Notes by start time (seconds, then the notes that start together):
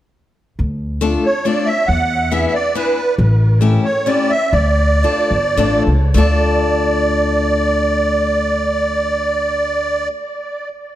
0.59 D2
1.01 A3 D4 F4 A4
1.25 C#5
1.45 A3 D4 F4 A4 D5
1.66 E5
1.87 E2 F#5
2.31 B3 D4 E4 G#4 E5
2.47 E5
2.54 D5
2.75 B3 D4 E4 G#4 B4
3.18 A1
3.61 A3 C#4 E4 G4
3.84 C#5
4.06 A3 C#4 E4 G4 D5
4.30 E5
4.52 D2 D5
5.03 A3 D4 F4 A4
5.31 G1
5.56 A1 A3 D4 F4 A4
5.87 C#2
6.14 D2 A3 D4 F4 A4 D5